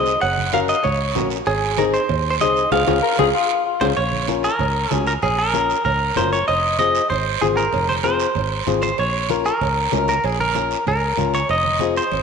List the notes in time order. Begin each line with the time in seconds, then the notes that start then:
Already playing: C2 C4 D#4 G#4 D#5
0.06 short guiro
0.21 F#1 F#5, cowbell, long guiro
0.37 high conga
0.53 C#4 F#4 A#4 F5, cowbell, high conga, short guiro
0.68 D#5, short guiro
0.84 C#2 C#5, cowbell, low conga, long guiro
1.15 A#1 C#4 F#4 A#4, cowbell, high conga, low conga, low timbale, short guiro
1.30 short guiro
1.46 G#1 G#4, cowbell, long guiro
1.78 C4 D#4 G#4 A#4, cowbell, high conga, short guiro
1.94 C5, short guiro
2.09 D#2, cowbell, low conga, long guiro
2.31 C5
2.40 C2 C4 D#4 G#4 D#5, cowbell, high conga, short guiro
2.56 short guiro
2.71 C#2 C#4 F4 G#4 F5, high conga, high timbale, long guiro
2.87 C#2 C#4 F4 G#4, high conga, high timbale, long guiro
3.02 A#4
3.19 C#2 C#4 F4 G#4, high conga, high timbale, long guiro
3.35 F4
3.66 F4
3.81 C#2 C#4 F4 G#4 C5, high conga, high timbale, long guiro
3.97 A#1 C#5, cowbell, high conga, long guiro
4.12 high conga
4.28 C#4 F4 A#4, high conga, short guiro
4.44 A#4, short guiro
4.59 C#2, cowbell, high conga, low conga, long guiro
4.91 C#2 C#4 F4 G#4 C#5, high conga, low timbale, short guiro
5.06 A#4, short guiro
5.22 A#1 G#4, cowbell, high conga, low conga, long guiro
5.39 A#4
5.53 C#4 F4 A#4, high conga, short guiro
5.70 short guiro
5.85 C#2 A#4, cowbell, high conga, low conga, long guiro
6.16 F#1 C#4 F4 A#4 C5, high conga, low conga, low timbale, short guiro
6.33 C#5, short guiro
6.48 F1 D#5, cowbell, high conga, long guiro
6.79 C4 F4 G#4 D#5, high conga, short guiro
6.95 short guiro
7.10 G#1 C5, cowbell, high conga, low conga, long guiro
7.42 G#1 C4 F4 G#4, high conga, short guiro
7.57 A#4, high conga, short guiro
7.73 F1, cowbell, high conga, low conga, long guiro
7.88 C5, high conga
8.03 C4 F4 G#4 C5, high conga, short guiro
8.20 short guiro
8.35 G#1, cowbell, high conga, low conga, long guiro
8.67 G#1 C4 F4 G#4, high conga, low conga, short guiro
8.82 C5, high conga, short guiro
8.98 A#1 C#5, cowbell, high conga, long guiro
9.29 C#4 F4 A#4, high conga, short guiro
9.45 A#4, short guiro
9.61 C#2, cowbell, high conga, low conga, long guiro
9.92 C#2 C#4 F4 A#4, high conga, low timbale, short guiro
10.08 A#4, high conga, short guiro
10.24 A#1 G#4, cowbell, long guiro
10.40 A#4, high conga
10.55 C#4 F4 A#4, high conga, short guiro
10.71 short guiro
10.87 C#2 A#4, cowbell, high conga, low conga, long guiro
11.17 C#2 C#4 F4 A#4, high conga, low conga, short guiro
11.33 C#5, high conga, short guiro
11.49 F1 D#5, cowbell, long guiro
11.64 high conga
11.79 C4 F4 G#4, high conga, short guiro
11.96 C5, short guiro
12.12 G#1, cowbell, high conga, low conga, long guiro